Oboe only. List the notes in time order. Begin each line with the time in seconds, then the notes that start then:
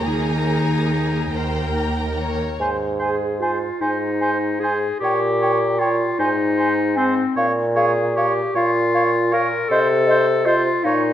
2.61 C5
2.99 C5
3.41 C5
3.81 C5
4.21 C5
4.63 C5
5.03 C#5
5.42 C#5
5.81 C#5
6.19 C5
6.57 C5
6.98 C5
7.36 C#5
7.76 C#5
8.17 C#5
8.55 C#5
8.95 C#5
9.31 C#5
9.71 C5
10.10 C5
10.47 C5
10.86 C#5